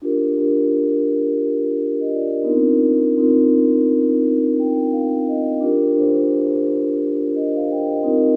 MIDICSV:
0, 0, Header, 1, 2, 480
1, 0, Start_track
1, 0, Key_signature, -3, "major"
1, 0, Tempo, 697674
1, 26, Time_signature, 4, 2, 24, 8
1, 5754, End_track
2, 0, Start_track
2, 0, Title_t, "Vibraphone"
2, 0, Program_c, 0, 11
2, 11, Note_on_c, 0, 62, 76
2, 17, Note_on_c, 0, 65, 77
2, 26, Note_on_c, 0, 67, 69
2, 33, Note_on_c, 0, 70, 84
2, 150, Control_c, 0, 64, 127
2, 248, Note_off_c, 0, 62, 0
2, 251, Note_off_c, 0, 65, 0
2, 256, Note_off_c, 0, 67, 0
2, 258, Note_on_c, 0, 62, 77
2, 259, Note_off_c, 0, 70, 0
2, 265, Note_on_c, 0, 65, 68
2, 275, Note_on_c, 0, 67, 73
2, 283, Note_on_c, 0, 70, 78
2, 1180, Note_off_c, 0, 62, 0
2, 1184, Note_off_c, 0, 65, 0
2, 1189, Note_off_c, 0, 67, 0
2, 1192, Note_off_c, 0, 70, 0
2, 1232, Note_on_c, 0, 70, 54
2, 1239, Note_on_c, 0, 62, 45
2, 1368, Note_off_c, 0, 70, 0
2, 1371, Note_off_c, 0, 62, 0
2, 1380, Note_on_c, 0, 75, 53
2, 1384, Note_on_c, 0, 67, 56
2, 1465, Note_off_c, 0, 75, 0
2, 1467, Note_off_c, 0, 67, 0
2, 1468, Note_on_c, 0, 74, 56
2, 1472, Note_on_c, 0, 65, 53
2, 1606, Note_off_c, 0, 74, 0
2, 1608, Note_off_c, 0, 65, 0
2, 1613, Note_on_c, 0, 70, 55
2, 1616, Note_on_c, 0, 62, 50
2, 1674, Note_on_c, 0, 59, 59
2, 1680, Note_on_c, 0, 63, 74
2, 1689, Note_off_c, 0, 70, 0
2, 1690, Note_on_c, 0, 65, 67
2, 1697, Note_on_c, 0, 70, 83
2, 1714, Control_c, 0, 64, 0
2, 1719, Note_on_c, 0, 60, 70
2, 1744, Note_off_c, 0, 59, 0
2, 1841, Control_c, 0, 64, 127
2, 1842, Note_off_c, 0, 62, 0
2, 2152, Note_off_c, 0, 63, 0
2, 2157, Note_off_c, 0, 65, 0
2, 2160, Note_off_c, 0, 70, 0
2, 2171, Note_off_c, 0, 60, 0
2, 2183, Note_on_c, 0, 60, 78
2, 2191, Note_on_c, 0, 63, 70
2, 2199, Note_on_c, 0, 65, 79
2, 2208, Note_on_c, 0, 70, 83
2, 3103, Note_off_c, 0, 60, 0
2, 3107, Note_off_c, 0, 63, 0
2, 3110, Note_off_c, 0, 65, 0
2, 3115, Note_off_c, 0, 70, 0
2, 3160, Note_on_c, 0, 79, 62
2, 3377, Note_off_c, 0, 79, 0
2, 3389, Note_on_c, 0, 77, 63
2, 3611, Note_off_c, 0, 77, 0
2, 3634, Note_on_c, 0, 75, 66
2, 3853, Note_off_c, 0, 75, 0
2, 3858, Note_on_c, 0, 62, 86
2, 3867, Note_on_c, 0, 65, 79
2, 3876, Control_c, 0, 64, 0
2, 3876, Note_on_c, 0, 67, 84
2, 3884, Note_on_c, 0, 70, 88
2, 3990, Control_c, 0, 64, 127
2, 4092, Note_off_c, 0, 62, 0
2, 4096, Note_off_c, 0, 65, 0
2, 4099, Note_on_c, 0, 62, 88
2, 4101, Note_off_c, 0, 67, 0
2, 4105, Note_off_c, 0, 70, 0
2, 4107, Note_on_c, 0, 65, 69
2, 4115, Note_on_c, 0, 67, 67
2, 4122, Note_on_c, 0, 72, 87
2, 5020, Note_off_c, 0, 62, 0
2, 5024, Note_off_c, 0, 65, 0
2, 5029, Note_off_c, 0, 67, 0
2, 5032, Note_off_c, 0, 72, 0
2, 5061, Note_on_c, 0, 75, 60
2, 5065, Note_on_c, 0, 67, 50
2, 5202, Note_off_c, 0, 75, 0
2, 5202, Note_on_c, 0, 77, 60
2, 5204, Note_off_c, 0, 67, 0
2, 5296, Note_off_c, 0, 77, 0
2, 5309, Note_on_c, 0, 79, 64
2, 5313, Note_on_c, 0, 70, 50
2, 5446, Note_off_c, 0, 79, 0
2, 5446, Note_on_c, 0, 75, 57
2, 5449, Note_off_c, 0, 70, 0
2, 5450, Note_on_c, 0, 67, 48
2, 5524, Note_on_c, 0, 60, 67
2, 5532, Note_on_c, 0, 63, 72
2, 5540, Note_on_c, 0, 65, 70
2, 5548, Note_on_c, 0, 70, 96
2, 5555, Control_c, 0, 64, 0
2, 5672, Control_c, 0, 64, 127
2, 5677, Note_off_c, 0, 75, 0
2, 5679, Note_off_c, 0, 67, 0
2, 5754, Note_off_c, 0, 60, 0
2, 5754, Note_off_c, 0, 63, 0
2, 5754, Note_off_c, 0, 65, 0
2, 5754, Note_off_c, 0, 70, 0
2, 5754, End_track
0, 0, End_of_file